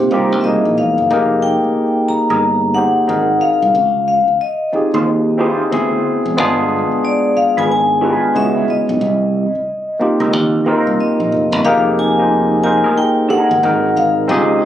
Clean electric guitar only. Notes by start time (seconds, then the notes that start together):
0.12 D#4 G4 A#4
2.30 D#4 G#4 A#4
4.95 D#4 F4 C5
5.06 muted clean electric guitar stroke
5.39 D#4 F4 C5
7.57 F4 G#4 B4
7.69 muted clean electric guitar stroke
8.01 F4 G#4 B4
10.20 C4 D#4 A#4
10.32 muted clean electric guitar stroke
10.66 C4 D#4 A#4
12.84 D#4 G#4 A#4
12.98 muted clean electric guitar stroke
13.29 D#4 G#4 A#4